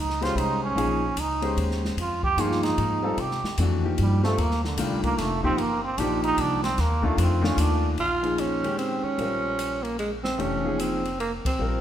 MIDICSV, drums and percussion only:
0, 0, Header, 1, 2, 480
1, 0, Start_track
1, 0, Tempo, 401070
1, 919, Time_signature, 3, 2, 24, 8
1, 14132, End_track
2, 0, Start_track
2, 0, Title_t, "Drums"
2, 116, Note_on_c, 9, 38, 29
2, 236, Note_off_c, 9, 38, 0
2, 267, Note_on_c, 9, 51, 45
2, 289, Note_on_c, 9, 38, 47
2, 387, Note_off_c, 9, 51, 0
2, 408, Note_off_c, 9, 38, 0
2, 453, Note_on_c, 9, 51, 61
2, 572, Note_off_c, 9, 51, 0
2, 932, Note_on_c, 9, 51, 64
2, 1052, Note_off_c, 9, 51, 0
2, 1397, Note_on_c, 9, 44, 54
2, 1397, Note_on_c, 9, 51, 76
2, 1517, Note_off_c, 9, 44, 0
2, 1517, Note_off_c, 9, 51, 0
2, 1703, Note_on_c, 9, 51, 48
2, 1823, Note_off_c, 9, 51, 0
2, 1885, Note_on_c, 9, 51, 58
2, 2005, Note_off_c, 9, 51, 0
2, 2046, Note_on_c, 9, 38, 28
2, 2165, Note_off_c, 9, 38, 0
2, 2212, Note_on_c, 9, 38, 46
2, 2331, Note_off_c, 9, 38, 0
2, 2368, Note_on_c, 9, 51, 61
2, 2488, Note_off_c, 9, 51, 0
2, 2670, Note_on_c, 9, 36, 69
2, 2790, Note_off_c, 9, 36, 0
2, 2846, Note_on_c, 9, 44, 51
2, 2846, Note_on_c, 9, 51, 67
2, 2966, Note_off_c, 9, 44, 0
2, 2966, Note_off_c, 9, 51, 0
2, 3009, Note_on_c, 9, 38, 27
2, 3129, Note_off_c, 9, 38, 0
2, 3150, Note_on_c, 9, 51, 48
2, 3163, Note_on_c, 9, 38, 43
2, 3270, Note_off_c, 9, 51, 0
2, 3283, Note_off_c, 9, 38, 0
2, 3325, Note_on_c, 9, 51, 60
2, 3445, Note_off_c, 9, 51, 0
2, 3801, Note_on_c, 9, 51, 56
2, 3921, Note_off_c, 9, 51, 0
2, 3962, Note_on_c, 9, 38, 29
2, 4082, Note_off_c, 9, 38, 0
2, 4122, Note_on_c, 9, 38, 47
2, 4241, Note_off_c, 9, 38, 0
2, 4279, Note_on_c, 9, 44, 51
2, 4279, Note_on_c, 9, 51, 69
2, 4399, Note_off_c, 9, 44, 0
2, 4399, Note_off_c, 9, 51, 0
2, 4761, Note_on_c, 9, 51, 60
2, 4880, Note_off_c, 9, 51, 0
2, 5070, Note_on_c, 9, 38, 42
2, 5190, Note_off_c, 9, 38, 0
2, 5246, Note_on_c, 9, 51, 62
2, 5365, Note_off_c, 9, 51, 0
2, 5396, Note_on_c, 9, 38, 29
2, 5516, Note_off_c, 9, 38, 0
2, 5560, Note_on_c, 9, 38, 47
2, 5679, Note_off_c, 9, 38, 0
2, 5715, Note_on_c, 9, 44, 57
2, 5715, Note_on_c, 9, 51, 78
2, 5835, Note_off_c, 9, 44, 0
2, 5835, Note_off_c, 9, 51, 0
2, 6024, Note_on_c, 9, 36, 66
2, 6026, Note_on_c, 9, 51, 49
2, 6144, Note_off_c, 9, 36, 0
2, 6146, Note_off_c, 9, 51, 0
2, 6204, Note_on_c, 9, 38, 40
2, 6204, Note_on_c, 9, 51, 63
2, 6324, Note_off_c, 9, 38, 0
2, 6324, Note_off_c, 9, 51, 0
2, 6504, Note_on_c, 9, 36, 61
2, 6623, Note_off_c, 9, 36, 0
2, 6681, Note_on_c, 9, 51, 60
2, 6800, Note_off_c, 9, 51, 0
2, 7156, Note_on_c, 9, 44, 56
2, 7156, Note_on_c, 9, 51, 69
2, 7275, Note_off_c, 9, 44, 0
2, 7275, Note_off_c, 9, 51, 0
2, 7462, Note_on_c, 9, 51, 47
2, 7582, Note_off_c, 9, 51, 0
2, 7632, Note_on_c, 9, 51, 65
2, 7752, Note_off_c, 9, 51, 0
2, 7944, Note_on_c, 9, 38, 51
2, 7944, Note_on_c, 9, 51, 47
2, 8064, Note_off_c, 9, 38, 0
2, 8064, Note_off_c, 9, 51, 0
2, 8112, Note_on_c, 9, 38, 36
2, 8112, Note_on_c, 9, 51, 60
2, 8231, Note_off_c, 9, 38, 0
2, 8231, Note_off_c, 9, 51, 0
2, 8417, Note_on_c, 9, 36, 63
2, 8537, Note_off_c, 9, 36, 0
2, 8595, Note_on_c, 9, 44, 54
2, 8595, Note_on_c, 9, 51, 74
2, 8715, Note_off_c, 9, 44, 0
2, 8715, Note_off_c, 9, 51, 0
2, 8905, Note_on_c, 9, 38, 57
2, 9025, Note_off_c, 9, 38, 0
2, 9069, Note_on_c, 9, 44, 65
2, 9069, Note_on_c, 9, 51, 77
2, 9189, Note_off_c, 9, 44, 0
2, 9189, Note_off_c, 9, 51, 0
2, 9546, Note_on_c, 9, 51, 52
2, 9665, Note_off_c, 9, 51, 0
2, 9856, Note_on_c, 9, 51, 41
2, 9976, Note_off_c, 9, 51, 0
2, 10032, Note_on_c, 9, 44, 45
2, 10032, Note_on_c, 9, 51, 61
2, 10151, Note_off_c, 9, 44, 0
2, 10151, Note_off_c, 9, 51, 0
2, 10343, Note_on_c, 9, 51, 42
2, 10463, Note_off_c, 9, 51, 0
2, 10516, Note_on_c, 9, 51, 51
2, 10635, Note_off_c, 9, 51, 0
2, 10993, Note_on_c, 9, 51, 50
2, 11113, Note_off_c, 9, 51, 0
2, 11474, Note_on_c, 9, 44, 53
2, 11474, Note_on_c, 9, 51, 64
2, 11593, Note_off_c, 9, 44, 0
2, 11593, Note_off_c, 9, 51, 0
2, 11784, Note_on_c, 9, 51, 39
2, 11904, Note_off_c, 9, 51, 0
2, 11954, Note_on_c, 9, 51, 55
2, 12074, Note_off_c, 9, 51, 0
2, 12261, Note_on_c, 9, 38, 55
2, 12381, Note_off_c, 9, 38, 0
2, 12441, Note_on_c, 9, 51, 47
2, 12561, Note_off_c, 9, 51, 0
2, 12919, Note_on_c, 9, 44, 59
2, 12919, Note_on_c, 9, 51, 63
2, 13038, Note_off_c, 9, 44, 0
2, 13038, Note_off_c, 9, 51, 0
2, 13229, Note_on_c, 9, 51, 43
2, 13349, Note_off_c, 9, 51, 0
2, 13405, Note_on_c, 9, 51, 52
2, 13525, Note_off_c, 9, 51, 0
2, 13705, Note_on_c, 9, 36, 81
2, 13714, Note_on_c, 9, 51, 76
2, 13825, Note_off_c, 9, 36, 0
2, 13833, Note_off_c, 9, 51, 0
2, 14132, End_track
0, 0, End_of_file